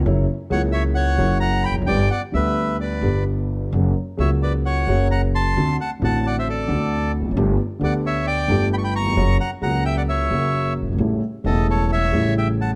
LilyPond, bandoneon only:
\new Staff \with { instrumentName = "Bandoneon" } { \time 4/4 \key fis \phrygian \tempo 4 = 132 << { r4 fis''8 e''8 fis''4 ais''8 b''8 | g''8 fis''8 e''4 d''4 r4 | r4 e''8 d''8 fis''4 ais''8 c'''8~ | c'''8 a''8 a''8 fis''16 e''16 d''4. r8 |
r4 fis''8 e''8 g''4 b''32 cis'''32 b''16 cis'''8~ | cis'''8 ais''8 ais''8 g''16 fis''16 e''4. r8 | r4 dis''8 cis''8 e''4 g''8 a''8 | } \\ { r4 cis''8 cis''8 cis''4 fis''8 g''8 | d''8 d''8 b'4 b'4 r4 | r4 cis''8 b'8 cis''4 fis''8 a''8~ | a''8 fis''8 fis''8 d''16 c''16 a'4. r8 |
r4 d''8 cis''8 d''4 g''16 g''16 ais''8~ | ais''8 fis''8 fis''8 e''16 d''16 cis''4. r8 | r4 a'8 a'8 cis''4 e''8 fis''8 | } >> }